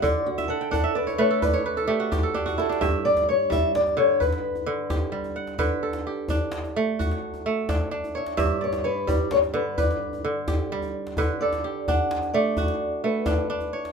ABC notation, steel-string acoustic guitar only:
X:1
M:12/8
L:1/8
Q:3/8=86
K:Glyd
V:1 name="Steel-string acoustic guitar"
d F A A B c d2 z3 A | G d c e d c B4- B z | z8 z3 e | d c B d c B d4- d z |
z d2 f2 d3 B3 z |]